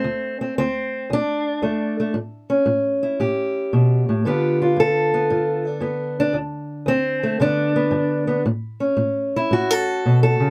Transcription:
Already playing: A3 C4
0.04 D2
0.41 C4
0.58 D2 C4
1.10 D2 D4
1.62 D2 A3
2.00 A3
2.14 A2
2.50 C#4
2.66 A2
3.03 E4
3.20 A2 G4
3.73 B2
4.09 A2
4.25 G2 D3 B3 F4 G4
4.62 F4
4.76 G2 A4
5.14 B3
5.30 G2 F4
5.67 D4
5.80 G2 B3
6.20 D4
6.33 D2
6.86 D2 C4
7.23 A3
7.40 G2 D3 B3 D4
7.76 B3
7.91 G2
8.27 B3
8.46 A2
8.80 C#4
8.97 A2
9.36 E4
9.51 A2 F#4
9.71 A4
10.06 B2
10.23 A4
10.40 C#3

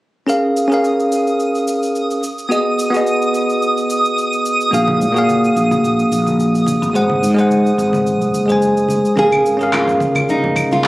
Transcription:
0.27 C#4 G#4 A#4 F5 D#6, cabasa
0.57 cabasa
0.68 C#4 G#4 A#4, cabasa
0.74 F5
0.85 cabasa
1.00 cabasa
1.12 cabasa
1.27 cabasa
1.40 cabasa
1.55 cabasa
1.68 cabasa
1.83 cabasa
1.95 cabasa
2.11 cabasa
2.23 cabasa
2.38 cabasa
2.49 B3 F#4 G#4 D#5, cabasa
2.79 cabasa
2.91 B3 F#4, cabasa
2.95 G#4 D#5
3.07 cabasa
3.22 cabasa
3.34 cabasa
3.50 cabasa
3.62 cabasa
3.77 cabasa
3.90 cabasa
4.05 cabasa
4.18 cabasa
4.33 cabasa
4.46 cabasa
4.61 cabasa
4.71 A#1 A#3 F#4 G#4 F5, cabasa
4.88 high conga
5.01 A#2, cabasa
5.12 A#3 F#4
5.16 G#4 F5, cabasa
5.29 high conga, cabasa
5.44 cabasa
5.56 A#1, cabasa
5.71 high conga, cabasa
5.84 A#1, cabasa
5.99 cabasa
6.12 A#1, cabasa
6.26 high conga, cabasa
6.40 cabasa
6.55 cabasa
6.66 high conga, cabasa
6.82 G#1, cabasa
6.93 G#1 G#3 G#4 C5 F#5, cabasa
7.09 high conga
7.23 G#2, cabasa
7.35 G#3 G#4, cabasa
7.39 C5 F#5
7.50 high conga, cabasa
7.66 cabasa
7.78 G#1, cabasa
7.93 high conga, cabasa
8.07 cabasa
8.21 C2, cabasa
8.33 F#1, cabasa
8.46 G#3 G#4 C5, high conga, cabasa
8.52 G#5
8.62 cabasa
8.77 cabasa
8.88 high conga, cabasa
9.05 cabasa
9.16 C#2 C#4 G#4 A#4 F5, kick, cabasa
9.32 high conga, cabasa, claves
9.45 G#1, cabasa
9.57 C#4 G#4 A#4, cabasa
9.63 F5
9.73 F4, clap, high conga, cabasa, claves
9.88 low conga, cabasa
10.00 C#2, kick, cabasa
10.15 high conga, cabasa, claves
10.29 C#2 D#4, cabasa
10.44 low conga
10.56 C#2, kick, cabasa, claves
10.71 F4, high conga, cabasa
10.84 clap

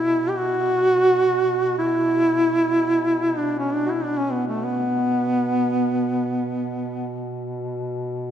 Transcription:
Already playing: B2 E4
0.29 G4
0.37 F#4
1.78 E4
3.38 D4
3.58 C#4
3.74 D4
3.86 E4 F#4
4.04 D4
4.17 C#4
4.31 B3
4.47 A3
4.64 B3

